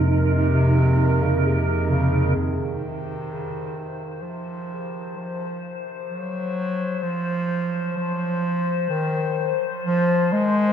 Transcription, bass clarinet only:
Already playing: C3
0.53 C3
1.23 C#3
1.47 C3
1.90 C#3
2.36 D#3
4.22 F3
5.17 F3
6.08 F#3
7.02 F3
7.97 F3
8.90 D#3
9.85 F3
10.32 G#3

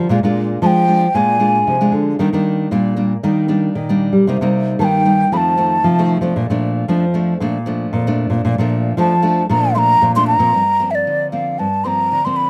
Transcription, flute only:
0.62 A5
0.66 G5
1.15 G#5
4.80 A5
4.85 G5
5.33 A5 B5
8.98 A5
9.51 A#5
9.75 A#5 C6
10.16 C6
10.27 A#5
10.91 E5
10.95 D5
11.32 F5
11.59 A5
11.84 A#5 C6
12.25 C6
12.36 B5

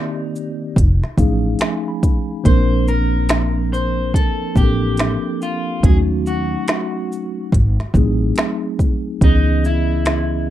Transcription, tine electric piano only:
Already playing: D#3 A#3 C4 G4 D5
1.17 F3 A3 C#4 D#4 G#4 F5
1.60 G#5
1.88 B5
2.43 F3 A#3 C4 D4 A#4
4.54 F3 A#3 C4 D4 G4
4.64 A4
5.83 F#3 A3 C#4 D#4 F#4
7.94 F#3 A3 C4 D#4 G#4
9.22 E3 B3 C#4 G#4 D#5

